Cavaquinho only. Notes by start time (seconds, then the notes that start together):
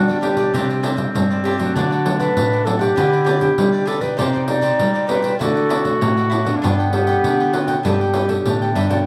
0.08 G4 B4 D5
0.21 D4 G4 B4 D5
0.37 G4 B4 D5
0.54 D4 G4 C5 D5
0.69 G4 C5 D5
0.83 D4 G4 C5 D5
0.96 muted cavaquinho stroke
1.31 G4 C5 D5
1.44 D4 G4 C5 D5
1.58 G4 C5 D5
1.77 D4 A4 D5 F#5
1.91 A4 D5 F#5
2.05 muted cavaquinho stroke
2.20 A4 D5 F#5
2.52 A4 D5 F#5
2.66 D4 A4 D5 F#5
2.79 A4 D5 F#5
2.96 D4 G4 B4 D5
3.12 G4 B4 D5
3.25 D4 G4 B4 D5
3.39 muted cavaquinho stroke
3.72 G4 B4 D5
3.85 D4 G4 B4 D5
4.00 G4 B4 D5
4.17 D#4 G4 C5 D5
4.33 G4 C5 D5
4.48 muted cavaquinho stroke
4.61 G4 C5 D5
4.94 G4 C5 D5
5.07 D#4 G4 C5 D5
5.22 G4 C5 D5
5.39 E4 A4 D5 F#5
5.55 A4 D5 F#5
5.69 E4 A4 D5 F#5
5.84 muted cavaquinho stroke
6.17 A4 D5 F#5
6.30 E4 A4 D5 F#5
6.45 A4 D5 F#5
6.62 D4 A4 B4 G5
6.79 A4 B4 G5
6.93 muted cavaquinho stroke
7.07 A4 B4 G5
7.40 A4 B4 G5
7.53 D4 A4 B4 G5
7.67 A4 B4 G5
7.83 D4 A4 B4 G5
8.00 A4 B4 G5
8.14 D4 A4 B4 G5
8.29 muted cavaquinho stroke
8.62 A4 B4 G5
8.75 D4 A4 B4 G5
8.90 A4 B4 G5